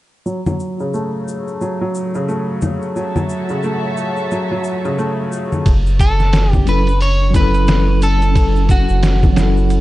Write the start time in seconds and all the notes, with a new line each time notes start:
0.26 F#3, shaker
0.46 F#3, low conga, shaker
0.60 shaker
0.79 C#3, shaker
0.94 A3, shaker
1.28 shaker
1.48 shaker
1.61 F#3, shaker
1.81 F#3
1.95 shaker
2.15 C#3, shaker
2.29 A3, shaker
2.61 low conga, shaker
2.82 shaker
2.96 F#3 F#4 C#5 E5 A5, shaker
3.16 F#3, low conga, shaker
3.29 shaker
3.49 C#3, shaker
3.63 A3, shaker
3.97 shaker
4.17 shaker
4.31 F#3, shaker
4.52 F#3
4.64 shaker
4.85 C#3, shaker
4.99 A3, shaker
5.32 shaker
5.52 low conga, shaker
5.66 F#1 C#4, kick, ride, shaker
5.86 shaker
5.99 A4, kick, ride, shaker
6.20 snare, shaker
6.33 snare, ride, shaker
6.53 G4, kick, low conga, shaker
6.66 F#1 F#3 C#4 E4 B4, ride, shaker
6.70 A4
6.87 ride, shaker
7.01 C#5, open hi-hat, shaker
7.30 F#3 C#4, low conga
7.34 E4 B4, kick, ride, shaker
7.40 A4
7.54 ride, shaker
7.67 snare, ride, shaker
8.02 A4, ride, shaker
8.22 ride, shaker
8.35 kick, ride, shaker
8.56 shaker
8.69 F#4, kick, ride, shaker
8.89 F#1, shaker
9.03 snare, ride, shaker
9.23 kick, low conga, shaker
9.33 F#3 C#4, ride
9.37 F#1 E4, snare, shaker
9.43 A4
9.57 shaker
9.70 ride, shaker